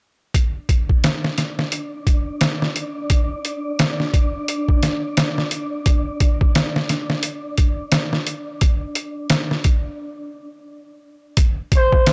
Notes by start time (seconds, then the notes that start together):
0.33 D4 D5, kick, closed hi-hat
0.69 kick, closed hi-hat
0.89 kick
1.04 snare, closed hi-hat
1.24 snare
1.38 snare, closed hi-hat
1.59 snare
1.72 closed hi-hat
2.07 kick, closed hi-hat
2.41 snare, closed hi-hat
2.62 snare
2.76 closed hi-hat
3.10 kick, closed hi-hat
3.45 closed hi-hat
3.79 snare, closed hi-hat
4.00 snare
4.14 kick, closed hi-hat
4.48 closed hi-hat
4.68 kick
4.83 snare, closed hi-hat
5.17 snare, closed hi-hat
5.38 snare
5.51 closed hi-hat
5.86 kick, closed hi-hat
6.20 kick, closed hi-hat
6.41 kick
6.55 snare, closed hi-hat
6.76 snare
6.89 snare, closed hi-hat
7.10 snare
7.23 closed hi-hat
7.58 kick, closed hi-hat
7.92 snare, closed hi-hat
8.13 snare
8.27 closed hi-hat
8.61 kick, closed hi-hat
8.95 closed hi-hat
9.30 snare, closed hi-hat
9.51 snare
9.64 kick, closed hi-hat
11.37 kick, closed hi-hat
11.72 C5, kick, closed hi-hat
11.92 kick
12.06 snare, closed hi-hat